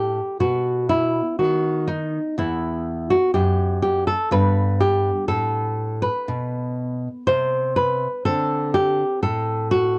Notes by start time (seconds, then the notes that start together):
Already playing: A2 B3 G4
0.40 B2 B3 F#4
0.89 E4
1.39 D#3 F#4
1.88 D#4
2.38 E2 B3 E4
3.11 F#4
3.34 F#2 G4
3.83 G4
4.07 A4
4.31 G2 B3 B4
4.80 G4
5.28 A2 A4
6.02 B4
6.28 B2
7.27 C3 C5
7.76 B4
8.25 D3 C4 A4
8.74 G4
9.23 A2 A4
9.71 F#4